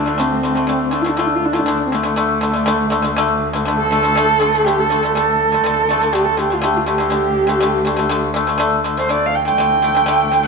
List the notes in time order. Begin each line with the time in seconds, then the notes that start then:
Already playing: D2 D4
0.06 D3 A3
0.18 D3 A3 C4
0.43 D3 A3
0.55 D3 A3
0.67 D3 A3
0.91 D3 A3 D4
1.01 D3 F4
1.06 A3 D4
1.17 D3 A3 F4
1.27 D4
1.35 F4
1.45 D4
1.53 D3 A3 F4
1.59 D4
1.66 D2 D3 A3
1.86 C4
1.92 D3 A3
2.03 D3 A3
2.16 D3 A3
2.41 D3 A3
2.54 D3 A3
2.66 D3 A3
2.90 D3 A3
3.02 D3 A3
3.17 D3 A3
3.53 D3 A3
3.65 D3 A3
3.79 A4
3.91 D3 A3
4.03 D3 A3
4.15 D3 A3
4.40 D3 A3
4.53 D3 A3
4.64 D3 A3 G4
4.80 A4
4.90 D3 A3
5.03 D3 A3
5.15 D3 A3 A4
5.52 D3 A3
5.64 D2 D3 A3
5.89 D3 A3
6.01 D3 A3
6.13 D3 A3 G4
6.24 A4
6.37 D3 A3 G4
6.50 D3 A3 F4
6.62 D3 A3 G4
6.77 F4
6.86 D3 A3 G4
6.98 D3 A3
7.10 D3 A3
7.47 D3 A3
7.61 D3 A3
7.85 D3 A3
7.96 D3 A3
8.09 D3 A3
8.34 D3 A3
8.47 D3 A3
8.58 D3 A3
8.84 D3 A3
8.97 D3 A3 C5
9.09 D3 A3 D5
9.26 F5
9.35 G5
9.45 D3 A3 G5
9.58 D2 D3 A3
9.82 D3 A3
9.95 D3 A3
10.06 D3 A3
10.32 D3 A3
10.44 D3